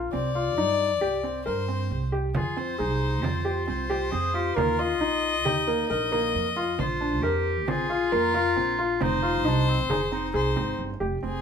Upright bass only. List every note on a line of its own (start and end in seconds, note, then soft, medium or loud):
0.00 0.11 A#1 medium
0.13 0.58 C2 medium
0.58 1.02 G2 medium
1.02 1.44 C2 medium
1.47 1.89 G2 medium
1.91 2.33 C2 medium
2.36 2.81 F2 medium
2.80 3.24 C2 medium
3.24 3.66 F2 medium
3.68 4.10 C2 medium
4.13 4.55 F2 medium
4.57 5.01 D#2 medium
5.01 5.46 A#1 medium
5.46 5.88 D#2 medium
5.91 6.33 A#1 medium
6.35 6.77 F2 medium
6.79 7.23 A#1 medium
7.23 7.69 F2 medium
7.69 8.10 A#1 medium
8.12 8.54 F2 medium
8.57 8.99 A#1 medium
9.01 9.46 F1 medium
9.46 9.90 C2 medium
9.90 10.32 F1 medium
10.34 10.55 C2 medium
10.56 10.77 G#1 medium
10.79 10.99 G1 medium
11.01 11.21 F1 medium
11.23 11.41 F1 medium